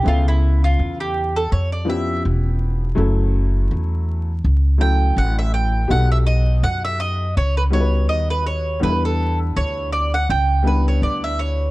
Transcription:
X:1
M:4/4
L:1/16
Q:"Swing 16ths" 1/4=82
K:Bm
V:1 name="Mandolin"
^E =E2 ^E2 G2 A c d =e2 z4 | z8 z2 g2 f e g2 | f e ^d2 f e d2 c B c2 d B c2 | B A2 z c2 d f g2 B c d e c2 |]
V:2 name="Grand piano"
[C,B,CAe]8 z2 [^E,B,C=EG]6 | [F,A,CEA]8 z2 [F,A,CEA]6 | [B,^DFGA]8 z2 [G,B,DFAB]6 | [G,B,DEAB]8 z2 [G,B,DEB]6 |]
V:3 name="Upright bass" clef=bass
C,,4 E,,4 ^E,,4 =E,,,4 | F,,,4 E,,4 C,,4 A,,,4 | B,,,4 F,,4 C,,4 ^D,,4 | E,,4 D,,4 C,,4 D,,4 |]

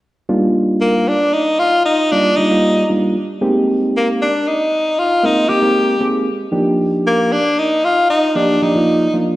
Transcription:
X:1
M:6/8
L:1/16
Q:3/8=77
K:Eb
V:1 name="Tenor saxophone"
z6 B,2 D2 E2 | F2 E2 D2 E4 z2 | z6 B,2 D2 E2- | E2 F2 E2 G4 z2 |
z6 B,2 D2 E2 | F2 E2 D2 E4 z2 |]
V:2 name="Reed electric piano"
z2 [G,B,DEF]6 z4 | z4 [G,B,DEF]2 [G,B,DEF] [G,B,EFd]2 z [G,B,DEF]2 | z2 [A,B,CEG]6 z4 | z4 [A,B,CEB]2 [A,B,CEB] [A,B,CEB]2 z [A,B,CEA]2 |
z2 [F,B,DEG]6 z4 | z4 [F,B,DEG]2 [F,B,DEG] [F,B,EFd]2 z [F,B,DEF]2 |]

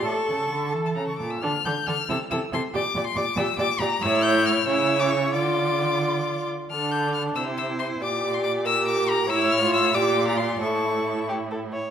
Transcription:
X:1
M:6/8
L:1/16
Q:3/8=91
K:Dm
V:1 name="Violin"
^c'6 z a b c' d' e' | f'2 g'2 f'2 e'2 e'2 c'2 | d'3 c' d'2 e'2 d'2 b2 | e'2 g'2 f'2 e'3 d' ^c'2 |
d'8- d'2 z2 | f'2 g'2 f'2 e'2 e'2 c'2 | d'3 c' d'2 e'2 d'2 b2 | e'2 f'2 e'2 d'3 b c'2 |
^c'6 z6 |]
V:2 name="Violin"
A8- A2 z2 | A2 A2 A2 A2 A2 A2 | d2 d2 d2 d2 d2 d2 | ^c6 c6 |
d8- d2 z2 | A6 c6 | d6 B6 | ^c6 d6 |
A6 G2 A2 ^c2 |]
V:3 name="Viola"
A8- A2 z2 | D2 D2 D2 E2 E2 E2 | G2 G2 G2 G2 G2 G2 | E6 E6 |
F8- F2 z2 | D6 E6 | G6 G6 | E3 F3 G3 F3 |
E8- E2 z2 |]
V:4 name="Cello" clef=bass
A,,2 ^C,2 D,2 E,2 C,2 B,,2 | D,2 D,2 D,2 C,2 C,2 C,2 | B,,2 B,,2 B,,2 B,,2 B,,2 B,,2 | A,,6 ^C,6 |
D,8- D,2 z2 | D,6 C,6 | B,,12 | A,,6 B,,6 |
A,,8- A,,2 z2 |]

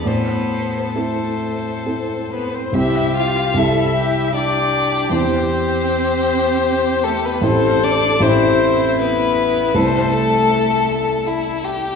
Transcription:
X:1
M:3/4
L:1/16
Q:1/4=77
K:Am
V:1 name="Violin"
A8- A2 B c | [K:C] e2 f2 e4 d4 | c8- c2 A B | c2 d2 c4 B4 |
A8- A2 z2 |]
V:2 name="Violin"
c4 c6- c z | [K:C] G4 A2 G2 G4- | G12 | A4 E8 |
c2 A6 E2 G2 |]
V:3 name="Grand piano"
A,,4 [CEA]4 [CEA]4 | [K:C] [C,,CEG]4 [C,,CEG]8 | [E,,CEG]12 | [A,,,A,EG]4 [A,,,A,EG]8 |
[C,,A,EA]12 |]
V:4 name="Cello"
B,4 A,4 z2 B, C | [K:C] E2 F2 E4 D4 | C8- C2 A, B, | C2 D2 C4 B,4 |
A,8- A,2 z2 |]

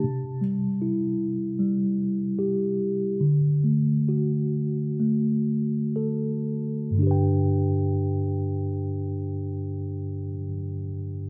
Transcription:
X:1
M:4/4
L:1/8
Q:1/4=64
K:G
V:1 name="Felt piano"
a z6 z | z8 | z8 |]
V:2 name="Tine electric piano"
C, G, E2 G,2 G2 | D, A, F2 A,2 A2 | [G,,D,DGBg]8 |]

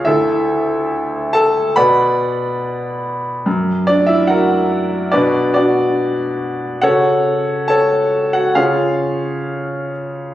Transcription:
X:1
M:4/4
L:1/16
Q:1/4=70
K:F#m
V:1 name="Grand piano"
[EAe]6 [Aa]2 [Bdfb]6 z2 | z2 [Dd] [Ee] [F^Af]4 [DFBd]2 [DFd]6 | [FAcf]4 [Aca]3 [Ff] [^EGc^e]6 z2 |]
V:2 name="Grand piano" clef=bass
D,,8 B,,8 | F,,8 B,,8 | C,8 C,8 |]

